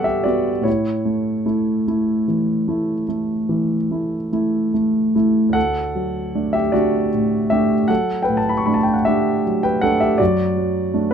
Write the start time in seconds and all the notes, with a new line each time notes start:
Already playing: G2 E3 G3 B3 F#4 G4 A4 D5 E5 F#5
0.04 G4 E5
0.24 B3 F#4 D5
0.60 A2 E4 C#5
1.05 A3
1.46 A3 E4
1.88 A3 E4
2.28 E3
2.68 A3 E4
3.09 A3
3.49 E3
3.91 A3 E4
4.32 A3 E4
4.74 A3
5.15 A3 E4
5.49 D2 F#5
5.54 A4
5.95 F#3
6.35 A3 D4
6.53 G4 E5
6.72 A3 D4 F#4 D5
7.13 A2
7.50 A3 D4 G4 E5
7.88 F#3 A4 F#5
8.22 B4 G5
8.28 A2
8.37 A5
8.49 B5
8.57 C#6
8.66 A3 D4 B5
8.74 A5
8.83 G5
8.94 F#5
9.05 A3 D4 G4 E5
9.46 F#3
9.63 B4 G5
9.81 A3 D4 A4 F#5
10.00 G4 E5
10.18 F#2 F#4 D5
10.56 F#3
10.94 A3 D4